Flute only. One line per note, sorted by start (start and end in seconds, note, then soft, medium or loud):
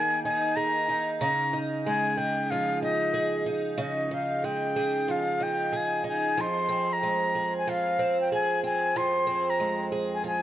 0.00 0.23 G#5 loud
0.24 0.58 G#5 loud
0.56 1.09 A#5 loud
1.20 1.58 A#5 loud
1.85 2.19 G#5 loud
2.17 2.52 G5 medium
2.51 2.83 F5 medium
2.83 3.44 D#5 medium
3.77 3.83 F5 medium
3.81 4.15 D#5 medium
4.14 4.46 F5 medium
4.45 5.12 G5 medium
5.11 5.44 F5 medium
5.43 5.78 G5 medium
5.77 6.07 G#5 medium
6.08 6.42 G#5 medium
6.41 6.94 C6 loud
6.93 7.56 A#5 medium
7.58 7.71 G#5 medium
7.69 8.20 F5 medium
8.21 8.32 G5 medium
8.34 8.63 G#5 loud
8.65 8.98 G#5 medium
8.97 9.51 C6 loud
9.50 9.86 A#5 medium
10.14 10.26 G#5 medium
10.27 10.42 G#5 medium